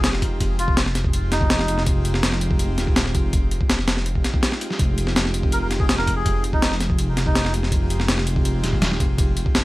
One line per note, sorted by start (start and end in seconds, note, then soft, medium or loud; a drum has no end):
0.00 0.76 F1 loud
0.00 0.38 G#3 loud
0.00 0.38 C4 medium
0.00 0.38 D#4 medium
0.00 0.38 F4 medium
0.00 0.38 G4 loud
0.00 0.10 G#4 medium
0.00 snare loud
0.00 closed hi-hat medium
0.13 snare soft
0.22 kick loud
0.22 closed hi-hat medium
0.40 0.45 G#3 loud
0.40 0.45 C4 medium
0.40 0.45 D#4 medium
0.40 0.45 F4 medium
0.40 0.45 G4 loud
0.40 kick loud
0.40 closed hi-hat medium
0.59 0.81 F4 medium
0.59 closed hi-hat medium
0.68 kick loud
0.77 1.30 F1 medium
0.77 snare loud
0.77 closed hi-hat medium
0.86 snare soft
0.95 1.66 G#3 loud
0.95 1.66 C4 medium
0.95 1.66 D#4 medium
0.95 1.66 F4 medium
0.95 1.66 G4 loud
0.95 snare soft
0.95 closed hi-hat medium
1.04 kick loud
1.13 closed hi-hat medium
1.32 1.67 F1 loud
1.32 1.83 D#4 loud
1.32 snare medium
1.32 closed hi-hat medium
1.41 kick loud
1.50 snare loud
1.50 closed hi-hat medium
1.59 snare medium
1.68 2.22 F1 loud
1.68 1.85 G#3 medium
1.68 1.85 C4 medium
1.68 1.85 D#4 medium
1.68 1.85 F4 medium
1.68 1.85 G4 medium
1.68 closed hi-hat medium
1.78 snare soft
1.87 2.40 G#3 loud
1.87 2.40 C4 medium
1.87 2.39 D#4 medium
1.87 2.39 F4 medium
1.87 2.40 G4 loud
1.87 kick loud
1.87 closed hi-hat medium
2.05 closed hi-hat medium
2.14 snare soft
2.23 2.77 F1 medium
2.23 snare loud
2.23 closed hi-hat medium
2.32 snare soft
2.41 3.31 G#3 loud
2.41 3.31 C4 medium
2.41 3.31 D#4 medium
2.41 3.31 F4 medium
2.41 3.31 G4 loud
2.41 closed hi-hat medium
2.51 kick loud
2.59 closed hi-hat medium
2.78 3.13 D#1 medium
2.78 snare soft
2.78 closed hi-hat medium
2.87 kick loud
2.96 snare loud
2.96 closed hi-hat medium
3.06 snare soft
3.15 3.59 F1 medium
3.15 kick medium
3.15 closed hi-hat medium
3.33 3.38 G#3 loud
3.33 3.38 C4 medium
3.33 3.38 D#4 medium
3.33 3.38 F4 medium
3.33 3.38 G4 loud
3.33 kick loud
3.33 closed hi-hat medium
3.51 closed hi-hat medium
3.61 kick medium
3.69 4.23 F1 medium
3.69 snare loud
3.69 closed hi-hat medium
3.79 snare soft
3.88 4.59 G#3 medium
3.88 4.59 C4 medium
3.88 4.59 D#4 medium
3.88 4.59 F4 medium
3.88 4.59 G4 loud
3.88 snare loud
3.88 closed hi-hat medium
3.97 snare soft
4.06 closed hi-hat medium
4.15 kick medium
4.24 snare medium
4.24 closed hi-hat medium
4.34 kick loud
4.43 snare loud
4.43 closed hi-hat medium
4.52 snare medium
4.61 4.77 G#3 medium
4.61 4.77 C4 medium
4.61 4.77 D#4 medium
4.61 4.77 F4 medium
4.61 4.77 G4 medium
4.61 closed hi-hat medium
4.70 snare soft
4.79 6.61 F1 loud
4.79 5.32 G#3 loud
4.79 5.32 C4 medium
4.79 5.32 D#4 medium
4.79 5.32 F4 medium
4.79 5.32 G4 loud
4.79 kick loud
4.79 closed hi-hat medium
4.98 closed hi-hat medium
5.07 snare soft
5.16 snare loud
5.16 closed hi-hat medium
5.25 snare soft
5.34 6.23 G#3 loud
5.34 6.24 C4 medium
5.34 6.23 D#4 medium
5.34 6.23 F4 medium
5.34 6.24 G4 loud
5.34 closed hi-hat medium
5.43 kick loud
5.52 5.59 A#4 medium
5.52 closed hi-hat medium
5.62 5.68 A#4 medium
5.71 snare soft
5.71 closed hi-hat medium
5.80 5.86 G#4 medium
5.80 kick loud
5.88 5.95 G#4 medium
5.88 snare loud
5.88 closed hi-hat medium
5.98 6.14 A#4 medium
5.98 snare soft
6.07 kick medium
6.07 closed hi-hat medium
6.16 6.44 G#4 medium
6.25 6.31 G#3 loud
6.25 6.31 C4 medium
6.25 6.31 D#4 medium
6.25 6.31 F4 medium
6.25 6.30 G4 loud
6.25 kick loud
6.25 closed hi-hat medium
6.44 closed hi-hat medium
6.53 6.75 D#4 medium
6.53 kick medium
6.62 7.16 F1 loud
6.62 snare loud
6.62 closed hi-hat medium
6.72 snare soft
6.80 7.52 G#3 loud
6.80 7.52 C4 medium
6.80 7.52 D#4 medium
6.80 7.52 F4 medium
6.80 7.52 G4 loud
6.80 snare soft
6.80 closed hi-hat medium
6.90 kick loud
6.99 closed hi-hat medium
7.17 7.52 F1 loud
7.17 snare medium
7.17 closed hi-hat medium
7.25 7.53 D#4 medium
7.25 kick loud
7.35 snare loud
7.35 closed hi-hat medium
7.45 snare medium
7.53 8.07 F1 loud
7.53 7.70 G#3 medium
7.53 7.70 C4 medium
7.53 7.70 D#4 medium
7.53 7.70 F4 medium
7.53 7.70 G4 medium
7.53 closed hi-hat medium
7.63 snare soft
7.72 8.25 G#3 loud
7.72 8.25 C4 medium
7.72 8.25 D#4 medium
7.72 8.25 F4 medium
7.72 8.25 G4 loud
7.72 kick loud
7.72 closed hi-hat medium
7.90 closed hi-hat medium
8.00 snare soft
8.08 8.62 F1 medium
8.08 snare loud
8.08 closed hi-hat medium
8.18 snare soft
8.27 9.16 G#3 loud
8.27 9.16 C4 medium
8.27 9.16 D#4 medium
8.27 9.16 F4 medium
8.27 9.16 G4 loud
8.27 closed hi-hat medium
8.36 kick loud
8.45 closed hi-hat medium
8.64 8.99 D#1 medium
8.64 snare soft
8.64 closed hi-hat medium
8.73 kick loud
8.82 snare loud
8.82 closed hi-hat medium
8.91 snare soft
9.00 9.45 F1 medium
9.00 kick loud
9.00 closed hi-hat medium
9.18 9.23 G#3 medium
9.18 9.24 C4 medium
9.18 9.24 D#4 medium
9.18 9.23 F4 medium
9.18 9.24 G4 loud
9.18 kick loud
9.18 closed hi-hat medium
9.37 closed hi-hat medium
9.46 kick loud
9.55 9.64 F1 medium
9.55 snare loud
9.55 closed hi-hat medium